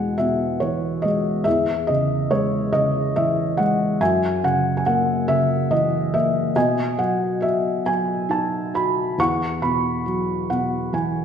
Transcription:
felt piano
Already playing: E2 B2 G#3 B4 F#5 G#5
0.18 B2 E5
0.60 E3 C#5
1.02 G#3 D#5
1.44 E2 G#4 E5
1.87 C#3 D#5
2.31 G#3 C#5
2.73 C#3 D#5
3.16 E3 E5
3.57 G#3 F#5
4.01 F#2 E5 G#5
4.44 C#3 F#5
4.77 G#5
4.86 A#3 F#5
5.28 C#3 E5
5.71 E3 D#5
6.14 A#3 E5
6.56 B2 D#5 G#5
6.98 F#3 F#5
7.41 F#4 E5
7.85 F#3 G#5
8.29 D#4 A5
8.74 F#4 B5
9.18 E2 F#5 C#6
9.62 B2 B5
10.06 F#3
10.50 B2 F#5
10.93 E3 G#5

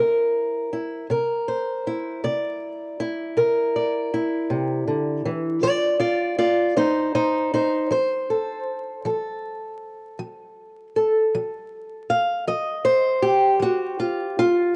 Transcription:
steel-string acoustic guitar
Already playing: C3 E4 A#4 C5
0.73 E4
1.10 C3 A#4
1.48 C5
1.87 E4
2.24 C3 D5
3.00 E4
3.37 C3 A#4
3.76 D5
4.14 E4
4.50 C3
4.88 D3
5.26 E3
5.62 F3 F4 D5
5.99 F4 D5
6.38 F4 D5
6.76 F3 D#4 C5
7.15 D#4 C5
7.54 D#4 C5
7.91 F3 C5
8.30 A4
9.05 F3 A4
10.19 F3
10.96 A4
11.35 F3
12.10 F5
12.48 F3 D#5
12.85 C5
13.23 G4
13.60 F3 F#4
14.00 F4
14.39 F4

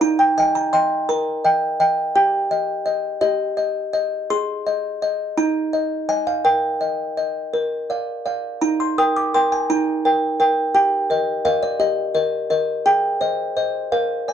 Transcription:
music box
0.01 D#4 A#5
0.19 G5
0.38 D#5 G5 G#5
0.55 A#5
0.73 D#5 G5 C6
1.09 A#4 A#5
1.45 D#5 G5
1.80 D#5 G5
2.15 G4 G5
2.51 D#5
2.86 D#5
3.21 G4 D#5
3.57 D#5
3.93 D#5
4.30 G#4 C6
4.66 D#5
5.02 D#5
5.37 D#4 A#5
5.73 D#5
6.09 D#5 G#5
6.27 F5
6.45 A#4 G5
6.81 D#5
7.17 D#5
7.53 A#4
7.90 D5 F5
8.26 D5 F5
8.61 D#4 A#5
8.80 C6
8.98 A#4 G5 D#6
9.16 D6
9.34 A#4 G5 C6
9.52 G#5
9.70 D#4 A#5
10.05 A#4 G5
10.40 A#4 G5
10.75 G4 G5
11.10 A#4 D#5
11.45 A#4 D#5 F5
11.63 D5
11.80 G4 D#5
12.15 A#4 D#5
12.50 A#4 D#5
12.86 G#4 G5
13.21 C5 D#5
13.57 C5 D#5
13.92 A#4 F5
14.28 D5 G#5

